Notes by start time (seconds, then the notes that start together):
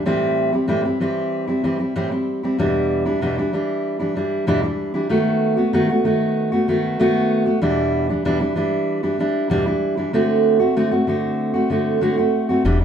0.05 A2 E3 G3 C4 E4
0.52 G3 C4 E4
0.68 A2 E3 G3 C4 E4
0.83 G3 C4 E4
1.00 E3 G3 C4 E4
1.47 G3 C4 E4
1.64 E3 G3 C4 E4
1.78 G3 C4 E4
1.96 A2 E3 G3 C4 E4
2.11 G3 C4 E4
2.43 G3 C4 E4
2.58 E2 B2 E3 G3 D4 E4
3.05 E3 G3 D4 E4
3.21 E2 B2 E3 G3 D4 E4
3.38 E3 G3 D4 E4
3.53 E3 G3 D4 E4
3.99 E3 G3 D4 E4
4.15 E3 G3 D4 E4
4.47 E2 B2 E3 G3 D4 E4
4.62 E3 G3 D4 E4
4.94 E3 G3 D4 E4
5.09 D#3 A3 B3 F#4
5.57 A3 B3 F#4
5.73 D#3 A3 B3 F#4
5.89 A3 B3 F#4
6.04 D#3 A3 B3 F#4
6.52 A3 B3 F#4
6.68 D#3 A3 B3 F#4
6.99 D#3 A3 B3 F#4
7.46 A3 B3 F#4
7.62 E2 B2 E3 G3 D4 E4
8.09 E3 G3 D4 E4
8.25 E2 B2 E3 G3 D4 E4
8.40 E3 G3 D4 E4
8.56 E3 G3 D4 E4
9.03 E3 G3 D4 E4
9.19 E3 G3 D4 E4
9.50 E2 B2 E3 G3 D4 E4
9.66 E3 G3 D4 E4
9.97 E3 G3 D4 E4
10.13 D3 A3 C4 F#4
10.60 A3 C4 F#4
10.76 D3 A3 C4 F#4
10.91 A3 C4 F#4
11.07 D3 A3 C4 F#4
11.54 A3 C4 F#4
11.70 D3 A3 C4 F#4
12.01 D3 A3 C4 F#4
12.17 A3 C4 F#4
12.49 A3 C4 F#4
12.64 E1 E2 B2 E3 G3 D4 E4
12.80 D4 E4